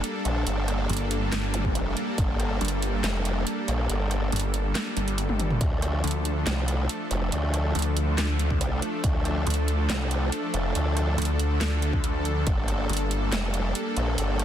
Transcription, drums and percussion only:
0.04 closed hi-hat
0.25 closed hi-hat
0.47 closed hi-hat
0.68 cross-stick, closed hi-hat
0.90 closed hi-hat
0.93 closed hi-hat
0.97 closed hi-hat
1.11 closed hi-hat
1.32 cross-stick, snare, clap, closed hi-hat
1.54 closed hi-hat
1.65 kick
1.75 closed hi-hat
1.97 closed hi-hat
2.18 kick, closed hi-hat
2.40 cross-stick, closed hi-hat
2.61 closed hi-hat
2.65 closed hi-hat
2.68 closed hi-hat
2.82 closed hi-hat
3.04 snare, clap, closed hi-hat
3.25 closed hi-hat
3.47 closed hi-hat
3.68 closed hi-hat
3.90 closed hi-hat
4.11 cross-stick, closed hi-hat
4.32 closed hi-hat
4.36 closed hi-hat
4.40 closed hi-hat
4.54 closed hi-hat
4.75 cross-stick, snare, clap, closed hi-hat
4.97 closed hi-hat
5.08 closed hi-hat
5.18 closed hi-hat
5.29 high tom
5.40 closed hi-hat, mid tom
5.51 mid tom
5.61 kick, closed hi-hat
5.82 cross-stick, closed hi-hat
6.04 closed hi-hat
6.07 closed hi-hat
6.11 closed hi-hat
6.25 closed hi-hat
6.47 snare, clap, closed hi-hat
6.68 closed hi-hat
6.89 closed hi-hat
7.11 closed hi-hat
7.32 closed hi-hat
7.54 cross-stick, closed hi-hat
7.75 closed hi-hat
7.79 closed hi-hat
7.82 closed hi-hat
7.97 closed hi-hat
8.18 cross-stick, snare, clap, closed hi-hat
8.39 closed hi-hat
8.50 kick
8.61 closed hi-hat
8.82 closed hi-hat
9.04 kick, closed hi-hat
9.25 cross-stick, closed hi-hat
9.47 closed hi-hat
9.50 closed hi-hat
9.54 closed hi-hat
9.68 closed hi-hat
9.90 snare, clap, closed hi-hat
10.11 closed hi-hat
10.32 closed hi-hat
10.54 closed hi-hat
10.75 closed hi-hat
10.97 cross-stick, closed hi-hat
11.18 closed hi-hat
11.22 closed hi-hat
11.25 closed hi-hat
11.39 closed hi-hat
11.61 cross-stick, snare, clap, closed hi-hat
11.82 closed hi-hat
11.93 kick
12.04 closed hi-hat
12.25 closed hi-hat
12.47 kick, closed hi-hat
12.68 cross-stick, closed hi-hat
12.90 closed hi-hat
12.93 closed hi-hat
12.97 closed hi-hat
13.11 closed hi-hat
13.32 snare, clap, closed hi-hat
13.54 closed hi-hat
13.75 closed hi-hat
13.97 closed hi-hat
14.18 closed hi-hat
14.39 cross-stick, closed hi-hat

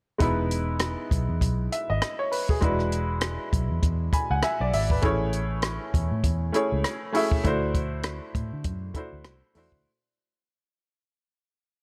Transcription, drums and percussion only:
0.20 kick, closed hi-hat
0.51 closed hi-hat
0.79 cross-stick, closed hi-hat
1.11 kick, closed hi-hat
1.41 kick, closed hi-hat
1.72 closed hi-hat
2.02 cross-stick, closed hi-hat
2.32 open hi-hat
2.49 kick
2.62 kick, closed hi-hat
2.79 cross-stick
2.92 closed hi-hat
3.21 cross-stick, closed hi-hat
3.53 kick, closed hi-hat
3.83 kick, closed hi-hat
4.13 kick, closed hi-hat
4.42 cross-stick, closed hi-hat
4.73 open hi-hat
4.90 kick
5.02 kick, closed hi-hat
5.33 closed hi-hat
5.62 cross-stick, closed hi-hat
5.94 kick, closed hi-hat
6.24 kick, closed hi-hat
6.54 closed hi-hat
6.84 cross-stick, closed hi-hat
7.14 open hi-hat
7.32 kick
7.45 kick, closed hi-hat
7.74 kick, closed hi-hat
8.03 cross-stick, closed hi-hat
8.35 kick, closed hi-hat
8.64 kick, closed hi-hat
8.94 kick, closed hi-hat
9.24 cross-stick, closed hi-hat
9.55 open hi-hat
9.72 kick

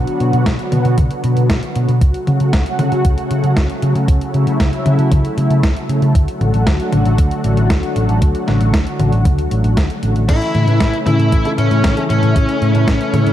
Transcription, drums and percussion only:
0.07 closed hi-hat
0.20 closed hi-hat
0.33 closed hi-hat
0.46 kick, snare, closed hi-hat
0.59 closed hi-hat
0.72 closed hi-hat, mid tom
0.85 closed hi-hat
0.98 kick, closed hi-hat, mid tom
1.11 closed hi-hat
1.24 closed hi-hat
1.37 closed hi-hat
1.50 kick, snare, closed hi-hat
1.63 closed hi-hat
1.75 closed hi-hat
1.89 closed hi-hat
2.01 kick, closed hi-hat
2.14 closed hi-hat
2.27 closed hi-hat, mid tom
2.40 closed hi-hat
2.53 kick, snare, closed hi-hat
2.66 closed hi-hat
2.79 closed hi-hat, mid tom
2.92 closed hi-hat
3.05 kick, closed hi-hat
3.18 closed hi-hat
3.31 closed hi-hat
3.44 closed hi-hat
3.57 kick, snare, closed hi-hat
3.70 closed hi-hat
3.82 closed hi-hat
3.96 closed hi-hat
4.08 kick, closed hi-hat
4.21 closed hi-hat
4.34 closed hi-hat
4.47 closed hi-hat
4.60 kick, snare, closed hi-hat
4.73 closed hi-hat
4.86 closed hi-hat, mid tom
4.99 closed hi-hat
5.12 kick, closed hi-hat, mid tom
5.25 closed hi-hat
5.38 closed hi-hat
5.50 closed hi-hat
5.63 kick, snare, closed hi-hat
5.76 closed hi-hat
5.89 closed hi-hat
6.02 closed hi-hat
6.15 kick, closed hi-hat
6.28 closed hi-hat
6.41 closed hi-hat, mid tom
6.54 closed hi-hat
6.67 kick, snare, closed hi-hat
6.80 closed hi-hat
6.92 closed hi-hat, mid tom
7.05 closed hi-hat
7.18 kick, closed hi-hat
7.31 closed hi-hat
7.44 closed hi-hat
7.57 closed hi-hat
7.70 kick, snare, closed hi-hat
7.83 closed hi-hat
7.96 closed hi-hat
8.09 closed hi-hat
8.22 kick, closed hi-hat
8.35 closed hi-hat
8.48 snare, closed hi-hat, mid tom
8.61 closed hi-hat
8.74 kick, snare, closed hi-hat
8.87 closed hi-hat
8.99 closed hi-hat, mid tom
9.12 closed hi-hat
9.25 kick, closed hi-hat, mid tom
9.39 closed hi-hat
9.51 closed hi-hat
9.64 closed hi-hat
9.77 kick, snare, closed hi-hat
9.90 closed hi-hat
10.03 closed hi-hat
10.16 closed hi-hat
10.29 kick, closed hi-hat, crash
10.42 closed hi-hat
10.55 closed hi-hat, mid tom
10.68 closed hi-hat
10.80 kick, snare, closed hi-hat
10.94 closed hi-hat
11.06 closed hi-hat, mid tom
11.20 closed hi-hat
11.32 kick, closed hi-hat
11.45 closed hi-hat
11.58 closed hi-hat
11.71 closed hi-hat
11.84 kick, snare, closed hi-hat
11.97 closed hi-hat
12.10 closed hi-hat
12.23 closed hi-hat
12.36 kick, closed hi-hat
12.49 closed hi-hat
12.62 closed hi-hat
12.75 closed hi-hat
12.88 kick, snare, closed hi-hat
13.01 closed hi-hat
13.14 closed hi-hat, mid tom
13.27 closed hi-hat

